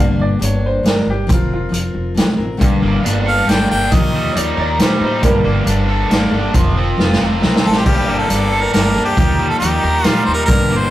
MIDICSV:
0, 0, Header, 1, 7, 480
1, 0, Start_track
1, 0, Key_signature, -2, "minor"
1, 0, Tempo, 437637
1, 1415, Time_signature, 3, 2, 24, 8
1, 11958, End_track
2, 0, Start_track
2, 0, Title_t, "Upright piano"
2, 0, Program_c, 0, 0
2, 0, Note_on_c, 0, 77, 86
2, 212, Note_off_c, 0, 77, 0
2, 233, Note_on_c, 0, 74, 77
2, 456, Note_off_c, 0, 74, 0
2, 472, Note_on_c, 0, 73, 68
2, 696, Note_off_c, 0, 73, 0
2, 725, Note_on_c, 0, 72, 84
2, 943, Note_off_c, 0, 72, 0
2, 962, Note_on_c, 0, 70, 68
2, 1181, Note_off_c, 0, 70, 0
2, 1206, Note_on_c, 0, 67, 83
2, 1424, Note_off_c, 0, 67, 0
2, 1462, Note_on_c, 0, 65, 84
2, 1667, Note_off_c, 0, 65, 0
2, 1684, Note_on_c, 0, 65, 77
2, 2602, Note_off_c, 0, 65, 0
2, 4737, Note_on_c, 0, 73, 64
2, 4768, Note_off_c, 0, 73, 0
2, 4784, Note_on_c, 0, 74, 76
2, 4991, Note_on_c, 0, 73, 62
2, 5013, Note_off_c, 0, 74, 0
2, 5020, Note_off_c, 0, 73, 0
2, 5043, Note_on_c, 0, 74, 75
2, 5263, Note_off_c, 0, 74, 0
2, 5278, Note_on_c, 0, 72, 76
2, 5474, Note_on_c, 0, 71, 54
2, 5500, Note_off_c, 0, 72, 0
2, 5502, Note_off_c, 0, 71, 0
2, 5524, Note_on_c, 0, 72, 74
2, 5744, Note_off_c, 0, 72, 0
2, 5744, Note_on_c, 0, 70, 87
2, 5973, Note_off_c, 0, 70, 0
2, 11958, End_track
3, 0, Start_track
3, 0, Title_t, "Harmonica"
3, 0, Program_c, 1, 22
3, 3595, Note_on_c, 1, 77, 95
3, 3836, Note_on_c, 1, 79, 80
3, 3853, Note_off_c, 1, 77, 0
3, 4058, Note_off_c, 1, 79, 0
3, 4064, Note_on_c, 1, 79, 87
3, 4314, Note_on_c, 1, 75, 77
3, 4331, Note_off_c, 1, 79, 0
3, 4786, Note_off_c, 1, 75, 0
3, 8402, Note_on_c, 1, 69, 82
3, 8522, Note_on_c, 1, 67, 71
3, 8538, Note_off_c, 1, 69, 0
3, 8611, Note_off_c, 1, 67, 0
3, 8618, Note_on_c, 1, 67, 81
3, 8973, Note_on_c, 1, 69, 81
3, 8989, Note_off_c, 1, 67, 0
3, 9448, Note_on_c, 1, 70, 75
3, 9464, Note_off_c, 1, 69, 0
3, 9571, Note_off_c, 1, 70, 0
3, 9578, Note_on_c, 1, 70, 80
3, 9911, Note_off_c, 1, 70, 0
3, 9921, Note_on_c, 1, 67, 81
3, 10407, Note_on_c, 1, 69, 86
3, 10423, Note_off_c, 1, 67, 0
3, 10511, Note_off_c, 1, 69, 0
3, 10518, Note_on_c, 1, 67, 79
3, 11033, Note_off_c, 1, 67, 0
3, 11033, Note_on_c, 1, 65, 79
3, 11237, Note_on_c, 1, 72, 95
3, 11254, Note_off_c, 1, 65, 0
3, 11328, Note_off_c, 1, 72, 0
3, 11335, Note_on_c, 1, 70, 83
3, 11458, Note_off_c, 1, 70, 0
3, 11465, Note_on_c, 1, 70, 93
3, 11814, Note_on_c, 1, 72, 101
3, 11831, Note_off_c, 1, 70, 0
3, 11958, Note_off_c, 1, 72, 0
3, 11958, End_track
4, 0, Start_track
4, 0, Title_t, "Overdriven electric guitar"
4, 0, Program_c, 2, 29
4, 3097, Note_on_c, 2, 58, 61
4, 3571, Note_on_c, 2, 69, 68
4, 3814, Note_off_c, 2, 58, 0
4, 4294, Note_off_c, 2, 69, 0
4, 4537, Note_on_c, 2, 55, 61
4, 5014, Note_on_c, 2, 70, 67
4, 5243, Note_off_c, 2, 55, 0
4, 5256, Note_on_c, 2, 55, 66
4, 5497, Note_on_c, 2, 63, 61
4, 5736, Note_off_c, 2, 55, 0
4, 5737, Note_off_c, 2, 63, 0
4, 5976, Note_on_c, 2, 58, 66
4, 6456, Note_off_c, 2, 70, 0
4, 6460, Note_on_c, 2, 69, 67
4, 6683, Note_off_c, 2, 58, 0
4, 7178, Note_off_c, 2, 69, 0
4, 7426, Note_on_c, 2, 60, 67
4, 7906, Note_on_c, 2, 70, 60
4, 8131, Note_off_c, 2, 60, 0
4, 8372, Note_on_c, 2, 65, 63
4, 8613, Note_off_c, 2, 65, 0
4, 8620, Note_off_c, 2, 70, 0
4, 8858, Note_on_c, 2, 58, 62
4, 9344, Note_on_c, 2, 69, 65
4, 9593, Note_off_c, 2, 58, 0
4, 10059, Note_off_c, 2, 69, 0
4, 10299, Note_on_c, 2, 55, 59
4, 10790, Note_on_c, 2, 70, 70
4, 11003, Note_off_c, 2, 55, 0
4, 11016, Note_on_c, 2, 55, 65
4, 11254, Note_on_c, 2, 63, 60
4, 11494, Note_off_c, 2, 63, 0
4, 11495, Note_off_c, 2, 55, 0
4, 11741, Note_on_c, 2, 58, 58
4, 11958, Note_off_c, 2, 58, 0
4, 11958, Note_off_c, 2, 70, 0
4, 11958, End_track
5, 0, Start_track
5, 0, Title_t, "Steel-string acoustic guitar"
5, 0, Program_c, 3, 25
5, 0, Note_on_c, 3, 43, 90
5, 0, Note_on_c, 3, 50, 81
5, 0, Note_on_c, 3, 55, 92
5, 0, Note_on_c, 3, 58, 90
5, 0, Note_on_c, 3, 62, 97
5, 0, Note_on_c, 3, 69, 90
5, 419, Note_off_c, 3, 55, 0
5, 432, Note_on_c, 3, 55, 67
5, 439, Note_off_c, 3, 58, 0
5, 443, Note_on_c, 3, 58, 65
5, 445, Note_off_c, 3, 62, 0
5, 451, Note_off_c, 3, 43, 0
5, 456, Note_off_c, 3, 69, 0
5, 457, Note_off_c, 3, 50, 0
5, 459, Note_on_c, 3, 62, 68
5, 469, Note_on_c, 3, 69, 80
5, 900, Note_off_c, 3, 55, 0
5, 913, Note_on_c, 3, 55, 60
5, 921, Note_off_c, 3, 58, 0
5, 925, Note_on_c, 3, 58, 61
5, 934, Note_off_c, 3, 62, 0
5, 934, Note_off_c, 3, 69, 0
5, 947, Note_on_c, 3, 62, 68
5, 947, Note_on_c, 3, 69, 59
5, 1386, Note_off_c, 3, 55, 0
5, 1387, Note_off_c, 3, 58, 0
5, 1391, Note_on_c, 3, 53, 77
5, 1392, Note_on_c, 3, 60, 86
5, 1404, Note_off_c, 3, 62, 0
5, 1409, Note_off_c, 3, 69, 0
5, 1409, Note_on_c, 3, 65, 75
5, 1414, Note_on_c, 3, 70, 94
5, 1841, Note_off_c, 3, 53, 0
5, 1854, Note_on_c, 3, 53, 61
5, 1858, Note_off_c, 3, 60, 0
5, 1871, Note_off_c, 3, 65, 0
5, 1871, Note_on_c, 3, 60, 54
5, 1884, Note_on_c, 3, 65, 68
5, 1892, Note_off_c, 3, 70, 0
5, 1896, Note_on_c, 3, 70, 71
5, 2340, Note_off_c, 3, 53, 0
5, 2353, Note_on_c, 3, 53, 62
5, 2354, Note_off_c, 3, 60, 0
5, 2367, Note_on_c, 3, 60, 64
5, 2370, Note_off_c, 3, 65, 0
5, 2382, Note_on_c, 3, 65, 68
5, 2386, Note_off_c, 3, 70, 0
5, 2390, Note_on_c, 3, 70, 75
5, 2586, Note_off_c, 3, 70, 0
5, 2599, Note_on_c, 3, 70, 53
5, 2604, Note_off_c, 3, 53, 0
5, 2612, Note_off_c, 3, 60, 0
5, 2612, Note_off_c, 3, 65, 0
5, 2625, Note_on_c, 3, 65, 42
5, 2639, Note_on_c, 3, 60, 43
5, 2822, Note_on_c, 3, 50, 91
5, 2825, Note_on_c, 3, 43, 73
5, 2834, Note_off_c, 3, 60, 0
5, 2835, Note_on_c, 3, 55, 78
5, 2838, Note_off_c, 3, 65, 0
5, 2838, Note_on_c, 3, 58, 91
5, 2843, Note_on_c, 3, 62, 84
5, 2848, Note_off_c, 3, 70, 0
5, 2853, Note_on_c, 3, 69, 97
5, 3319, Note_off_c, 3, 50, 0
5, 3321, Note_off_c, 3, 43, 0
5, 3327, Note_off_c, 3, 55, 0
5, 3330, Note_off_c, 3, 62, 0
5, 3331, Note_on_c, 3, 55, 67
5, 3335, Note_off_c, 3, 69, 0
5, 3337, Note_off_c, 3, 58, 0
5, 3341, Note_on_c, 3, 58, 62
5, 3356, Note_on_c, 3, 62, 63
5, 3370, Note_on_c, 3, 69, 69
5, 3777, Note_off_c, 3, 55, 0
5, 3782, Note_on_c, 3, 55, 52
5, 3791, Note_off_c, 3, 58, 0
5, 3794, Note_off_c, 3, 62, 0
5, 3796, Note_on_c, 3, 58, 51
5, 3807, Note_on_c, 3, 62, 63
5, 3808, Note_off_c, 3, 69, 0
5, 3821, Note_on_c, 3, 69, 62
5, 4033, Note_off_c, 3, 69, 0
5, 4039, Note_off_c, 3, 55, 0
5, 4045, Note_off_c, 3, 62, 0
5, 4046, Note_off_c, 3, 58, 0
5, 4047, Note_on_c, 3, 69, 42
5, 4058, Note_on_c, 3, 62, 48
5, 4079, Note_on_c, 3, 55, 40
5, 4081, Note_on_c, 3, 58, 38
5, 4281, Note_on_c, 3, 51, 64
5, 4282, Note_off_c, 3, 58, 0
5, 4286, Note_off_c, 3, 55, 0
5, 4290, Note_on_c, 3, 53, 79
5, 4292, Note_off_c, 3, 69, 0
5, 4295, Note_on_c, 3, 58, 72
5, 4297, Note_off_c, 3, 62, 0
5, 4301, Note_on_c, 3, 63, 84
5, 4307, Note_on_c, 3, 67, 91
5, 4748, Note_off_c, 3, 53, 0
5, 4762, Note_on_c, 3, 53, 59
5, 4769, Note_off_c, 3, 51, 0
5, 4774, Note_off_c, 3, 58, 0
5, 4779, Note_off_c, 3, 63, 0
5, 4779, Note_on_c, 3, 58, 56
5, 4792, Note_on_c, 3, 63, 64
5, 4795, Note_off_c, 3, 67, 0
5, 4801, Note_on_c, 3, 67, 62
5, 5225, Note_off_c, 3, 53, 0
5, 5239, Note_on_c, 3, 53, 62
5, 5247, Note_off_c, 3, 63, 0
5, 5250, Note_off_c, 3, 58, 0
5, 5254, Note_off_c, 3, 67, 0
5, 5255, Note_on_c, 3, 58, 62
5, 5260, Note_on_c, 3, 63, 69
5, 5267, Note_on_c, 3, 67, 78
5, 5717, Note_on_c, 3, 43, 71
5, 5728, Note_off_c, 3, 53, 0
5, 5730, Note_off_c, 3, 58, 0
5, 5730, Note_on_c, 3, 50, 81
5, 5735, Note_off_c, 3, 63, 0
5, 5735, Note_on_c, 3, 58, 84
5, 5736, Note_on_c, 3, 55, 88
5, 5740, Note_off_c, 3, 67, 0
5, 5740, Note_on_c, 3, 62, 90
5, 5745, Note_on_c, 3, 69, 79
5, 6179, Note_off_c, 3, 55, 0
5, 6192, Note_on_c, 3, 55, 60
5, 6203, Note_off_c, 3, 58, 0
5, 6207, Note_off_c, 3, 43, 0
5, 6208, Note_on_c, 3, 58, 62
5, 6209, Note_off_c, 3, 62, 0
5, 6213, Note_off_c, 3, 50, 0
5, 6214, Note_off_c, 3, 69, 0
5, 6222, Note_on_c, 3, 62, 61
5, 6227, Note_on_c, 3, 69, 65
5, 6658, Note_off_c, 3, 55, 0
5, 6671, Note_on_c, 3, 55, 62
5, 6684, Note_off_c, 3, 62, 0
5, 6693, Note_off_c, 3, 58, 0
5, 6697, Note_off_c, 3, 69, 0
5, 6697, Note_on_c, 3, 62, 59
5, 6698, Note_on_c, 3, 58, 76
5, 6711, Note_on_c, 3, 69, 63
5, 6916, Note_off_c, 3, 69, 0
5, 6924, Note_off_c, 3, 55, 0
5, 6929, Note_on_c, 3, 69, 55
5, 6933, Note_off_c, 3, 62, 0
5, 6937, Note_off_c, 3, 58, 0
5, 6947, Note_on_c, 3, 62, 55
5, 6952, Note_on_c, 3, 58, 45
5, 6967, Note_on_c, 3, 55, 48
5, 7166, Note_off_c, 3, 58, 0
5, 7167, Note_off_c, 3, 55, 0
5, 7170, Note_on_c, 3, 60, 80
5, 7171, Note_on_c, 3, 53, 87
5, 7173, Note_off_c, 3, 69, 0
5, 7176, Note_off_c, 3, 62, 0
5, 7180, Note_on_c, 3, 65, 86
5, 7184, Note_on_c, 3, 70, 95
5, 7636, Note_off_c, 3, 53, 0
5, 7646, Note_off_c, 3, 60, 0
5, 7650, Note_on_c, 3, 53, 57
5, 7658, Note_off_c, 3, 65, 0
5, 7659, Note_on_c, 3, 60, 54
5, 7660, Note_off_c, 3, 70, 0
5, 7680, Note_on_c, 3, 70, 73
5, 7681, Note_on_c, 3, 65, 72
5, 8106, Note_off_c, 3, 53, 0
5, 8116, Note_off_c, 3, 60, 0
5, 8119, Note_on_c, 3, 53, 61
5, 8129, Note_on_c, 3, 60, 65
5, 8130, Note_off_c, 3, 65, 0
5, 8139, Note_off_c, 3, 70, 0
5, 8143, Note_on_c, 3, 65, 63
5, 8153, Note_on_c, 3, 70, 66
5, 8607, Note_off_c, 3, 53, 0
5, 8612, Note_off_c, 3, 60, 0
5, 8615, Note_on_c, 3, 43, 75
5, 8619, Note_off_c, 3, 65, 0
5, 8620, Note_on_c, 3, 50, 76
5, 8623, Note_on_c, 3, 55, 65
5, 8624, Note_off_c, 3, 70, 0
5, 8626, Note_on_c, 3, 58, 69
5, 8638, Note_on_c, 3, 62, 83
5, 8638, Note_on_c, 3, 69, 86
5, 9076, Note_off_c, 3, 55, 0
5, 9080, Note_on_c, 3, 55, 48
5, 9095, Note_off_c, 3, 43, 0
5, 9096, Note_off_c, 3, 58, 0
5, 9098, Note_off_c, 3, 50, 0
5, 9100, Note_on_c, 3, 58, 61
5, 9107, Note_off_c, 3, 62, 0
5, 9107, Note_off_c, 3, 69, 0
5, 9118, Note_on_c, 3, 62, 60
5, 9122, Note_on_c, 3, 69, 58
5, 9558, Note_off_c, 3, 55, 0
5, 9563, Note_on_c, 3, 55, 56
5, 9581, Note_off_c, 3, 58, 0
5, 9586, Note_on_c, 3, 58, 58
5, 9587, Note_off_c, 3, 62, 0
5, 9588, Note_off_c, 3, 69, 0
5, 9598, Note_on_c, 3, 62, 59
5, 9600, Note_on_c, 3, 69, 58
5, 9809, Note_off_c, 3, 55, 0
5, 9810, Note_off_c, 3, 69, 0
5, 9817, Note_off_c, 3, 62, 0
5, 9820, Note_off_c, 3, 58, 0
5, 9823, Note_on_c, 3, 69, 50
5, 9830, Note_on_c, 3, 62, 40
5, 9842, Note_on_c, 3, 58, 38
5, 9852, Note_on_c, 3, 55, 41
5, 10045, Note_on_c, 3, 51, 61
5, 10046, Note_off_c, 3, 55, 0
5, 10051, Note_off_c, 3, 58, 0
5, 10051, Note_on_c, 3, 53, 79
5, 10059, Note_off_c, 3, 69, 0
5, 10062, Note_off_c, 3, 62, 0
5, 10065, Note_on_c, 3, 58, 72
5, 10068, Note_on_c, 3, 63, 83
5, 10080, Note_on_c, 3, 67, 81
5, 10525, Note_off_c, 3, 53, 0
5, 10530, Note_off_c, 3, 51, 0
5, 10539, Note_on_c, 3, 53, 59
5, 10541, Note_off_c, 3, 63, 0
5, 10551, Note_off_c, 3, 58, 0
5, 10555, Note_on_c, 3, 58, 56
5, 10563, Note_on_c, 3, 63, 48
5, 10572, Note_off_c, 3, 67, 0
5, 10578, Note_on_c, 3, 67, 61
5, 10993, Note_off_c, 3, 53, 0
5, 11006, Note_on_c, 3, 53, 54
5, 11012, Note_off_c, 3, 63, 0
5, 11014, Note_off_c, 3, 58, 0
5, 11017, Note_off_c, 3, 67, 0
5, 11018, Note_on_c, 3, 58, 56
5, 11025, Note_on_c, 3, 63, 58
5, 11030, Note_on_c, 3, 67, 58
5, 11490, Note_off_c, 3, 53, 0
5, 11491, Note_on_c, 3, 50, 69
5, 11496, Note_on_c, 3, 43, 68
5, 11499, Note_off_c, 3, 63, 0
5, 11502, Note_off_c, 3, 67, 0
5, 11506, Note_off_c, 3, 58, 0
5, 11507, Note_on_c, 3, 55, 73
5, 11509, Note_on_c, 3, 62, 80
5, 11510, Note_on_c, 3, 58, 75
5, 11958, Note_off_c, 3, 43, 0
5, 11958, Note_off_c, 3, 50, 0
5, 11958, Note_off_c, 3, 55, 0
5, 11958, Note_off_c, 3, 58, 0
5, 11958, Note_off_c, 3, 62, 0
5, 11958, End_track
6, 0, Start_track
6, 0, Title_t, "Upright bass"
6, 0, Program_c, 4, 32
6, 0, Note_on_c, 4, 31, 89
6, 183, Note_off_c, 4, 31, 0
6, 211, Note_on_c, 4, 31, 85
6, 424, Note_off_c, 4, 31, 0
6, 448, Note_on_c, 4, 31, 88
6, 875, Note_off_c, 4, 31, 0
6, 924, Note_on_c, 4, 31, 81
6, 1141, Note_off_c, 4, 31, 0
6, 1163, Note_on_c, 4, 31, 66
6, 1413, Note_off_c, 4, 31, 0
6, 1413, Note_on_c, 4, 29, 86
6, 1838, Note_off_c, 4, 29, 0
6, 1887, Note_on_c, 4, 29, 81
6, 2103, Note_off_c, 4, 29, 0
6, 2128, Note_on_c, 4, 29, 78
6, 2343, Note_off_c, 4, 29, 0
6, 2377, Note_on_c, 4, 36, 71
6, 2588, Note_off_c, 4, 36, 0
6, 2615, Note_on_c, 4, 33, 69
6, 2860, Note_off_c, 4, 33, 0
6, 2860, Note_on_c, 4, 31, 92
6, 3070, Note_off_c, 4, 31, 0
6, 3094, Note_on_c, 4, 31, 88
6, 3307, Note_off_c, 4, 31, 0
6, 3330, Note_on_c, 4, 31, 93
6, 3757, Note_off_c, 4, 31, 0
6, 3816, Note_on_c, 4, 31, 79
6, 4028, Note_off_c, 4, 31, 0
6, 4074, Note_on_c, 4, 31, 78
6, 4278, Note_off_c, 4, 31, 0
6, 4302, Note_on_c, 4, 39, 87
6, 4723, Note_off_c, 4, 39, 0
6, 4771, Note_on_c, 4, 39, 87
6, 4986, Note_off_c, 4, 39, 0
6, 5015, Note_on_c, 4, 39, 84
6, 5228, Note_off_c, 4, 39, 0
6, 5254, Note_on_c, 4, 46, 76
6, 5467, Note_off_c, 4, 46, 0
6, 5485, Note_on_c, 4, 45, 81
6, 5732, Note_on_c, 4, 31, 95
6, 5749, Note_off_c, 4, 45, 0
6, 5946, Note_off_c, 4, 31, 0
6, 5965, Note_on_c, 4, 31, 86
6, 6182, Note_off_c, 4, 31, 0
6, 6207, Note_on_c, 4, 31, 90
6, 6635, Note_off_c, 4, 31, 0
6, 6687, Note_on_c, 4, 31, 83
6, 6903, Note_off_c, 4, 31, 0
6, 6927, Note_on_c, 4, 31, 73
6, 7143, Note_off_c, 4, 31, 0
6, 7178, Note_on_c, 4, 29, 98
6, 7601, Note_off_c, 4, 29, 0
6, 7653, Note_on_c, 4, 29, 91
6, 7866, Note_off_c, 4, 29, 0
6, 7912, Note_on_c, 4, 29, 71
6, 8117, Note_off_c, 4, 29, 0
6, 8149, Note_on_c, 4, 36, 81
6, 8355, Note_off_c, 4, 36, 0
6, 8396, Note_on_c, 4, 33, 70
6, 8599, Note_off_c, 4, 33, 0
6, 8620, Note_on_c, 4, 31, 90
6, 8830, Note_off_c, 4, 31, 0
6, 8878, Note_on_c, 4, 31, 81
6, 9080, Note_off_c, 4, 31, 0
6, 9103, Note_on_c, 4, 31, 87
6, 9523, Note_off_c, 4, 31, 0
6, 9587, Note_on_c, 4, 31, 85
6, 9794, Note_off_c, 4, 31, 0
6, 9831, Note_on_c, 4, 38, 84
6, 10036, Note_off_c, 4, 38, 0
6, 10059, Note_on_c, 4, 39, 98
6, 10481, Note_off_c, 4, 39, 0
6, 10542, Note_on_c, 4, 39, 93
6, 10751, Note_off_c, 4, 39, 0
6, 10784, Note_on_c, 4, 39, 79
6, 10992, Note_off_c, 4, 39, 0
6, 11027, Note_on_c, 4, 46, 86
6, 11233, Note_off_c, 4, 46, 0
6, 11269, Note_on_c, 4, 39, 75
6, 11474, Note_off_c, 4, 39, 0
6, 11498, Note_on_c, 4, 31, 96
6, 11708, Note_off_c, 4, 31, 0
6, 11727, Note_on_c, 4, 31, 79
6, 11942, Note_off_c, 4, 31, 0
6, 11958, End_track
7, 0, Start_track
7, 0, Title_t, "Drums"
7, 459, Note_on_c, 9, 42, 62
7, 569, Note_off_c, 9, 42, 0
7, 936, Note_on_c, 9, 42, 51
7, 943, Note_on_c, 9, 38, 69
7, 1046, Note_off_c, 9, 42, 0
7, 1052, Note_off_c, 9, 38, 0
7, 1418, Note_on_c, 9, 36, 107
7, 1420, Note_on_c, 9, 42, 62
7, 1528, Note_off_c, 9, 36, 0
7, 1529, Note_off_c, 9, 42, 0
7, 1904, Note_on_c, 9, 42, 50
7, 2014, Note_off_c, 9, 42, 0
7, 2382, Note_on_c, 9, 42, 48
7, 2389, Note_on_c, 9, 38, 76
7, 2492, Note_off_c, 9, 42, 0
7, 2499, Note_off_c, 9, 38, 0
7, 2864, Note_on_c, 9, 36, 109
7, 2865, Note_on_c, 9, 42, 57
7, 2974, Note_off_c, 9, 36, 0
7, 2975, Note_off_c, 9, 42, 0
7, 3353, Note_on_c, 9, 42, 60
7, 3463, Note_off_c, 9, 42, 0
7, 3825, Note_on_c, 9, 42, 57
7, 3831, Note_on_c, 9, 38, 68
7, 3934, Note_off_c, 9, 42, 0
7, 3941, Note_off_c, 9, 38, 0
7, 4295, Note_on_c, 9, 42, 62
7, 4301, Note_on_c, 9, 36, 109
7, 4405, Note_off_c, 9, 42, 0
7, 4411, Note_off_c, 9, 36, 0
7, 4787, Note_on_c, 9, 42, 64
7, 4896, Note_off_c, 9, 42, 0
7, 5258, Note_on_c, 9, 42, 55
7, 5265, Note_on_c, 9, 38, 76
7, 5368, Note_off_c, 9, 42, 0
7, 5375, Note_off_c, 9, 38, 0
7, 5734, Note_on_c, 9, 42, 59
7, 5736, Note_on_c, 9, 36, 106
7, 5844, Note_off_c, 9, 42, 0
7, 5846, Note_off_c, 9, 36, 0
7, 6216, Note_on_c, 9, 42, 54
7, 6325, Note_off_c, 9, 42, 0
7, 6700, Note_on_c, 9, 42, 50
7, 6706, Note_on_c, 9, 38, 67
7, 6810, Note_off_c, 9, 42, 0
7, 6816, Note_off_c, 9, 38, 0
7, 7178, Note_on_c, 9, 36, 116
7, 7178, Note_on_c, 9, 42, 57
7, 7287, Note_off_c, 9, 42, 0
7, 7288, Note_off_c, 9, 36, 0
7, 7670, Note_on_c, 9, 38, 50
7, 7780, Note_off_c, 9, 38, 0
7, 7820, Note_on_c, 9, 38, 59
7, 7929, Note_off_c, 9, 38, 0
7, 8142, Note_on_c, 9, 38, 58
7, 8252, Note_off_c, 9, 38, 0
7, 8294, Note_on_c, 9, 38, 85
7, 8404, Note_off_c, 9, 38, 0
7, 8463, Note_on_c, 9, 38, 67
7, 8572, Note_off_c, 9, 38, 0
7, 8619, Note_on_c, 9, 49, 86
7, 8621, Note_on_c, 9, 36, 107
7, 8729, Note_off_c, 9, 49, 0
7, 8731, Note_off_c, 9, 36, 0
7, 9102, Note_on_c, 9, 42, 62
7, 9212, Note_off_c, 9, 42, 0
7, 9585, Note_on_c, 9, 42, 51
7, 9591, Note_on_c, 9, 38, 63
7, 9694, Note_off_c, 9, 42, 0
7, 9701, Note_off_c, 9, 38, 0
7, 10061, Note_on_c, 9, 36, 101
7, 10063, Note_on_c, 9, 42, 58
7, 10170, Note_off_c, 9, 36, 0
7, 10173, Note_off_c, 9, 42, 0
7, 10548, Note_on_c, 9, 42, 58
7, 10657, Note_off_c, 9, 42, 0
7, 11013, Note_on_c, 9, 42, 54
7, 11019, Note_on_c, 9, 38, 74
7, 11122, Note_off_c, 9, 42, 0
7, 11129, Note_off_c, 9, 38, 0
7, 11492, Note_on_c, 9, 42, 59
7, 11498, Note_on_c, 9, 36, 107
7, 11602, Note_off_c, 9, 42, 0
7, 11607, Note_off_c, 9, 36, 0
7, 11958, End_track
0, 0, End_of_file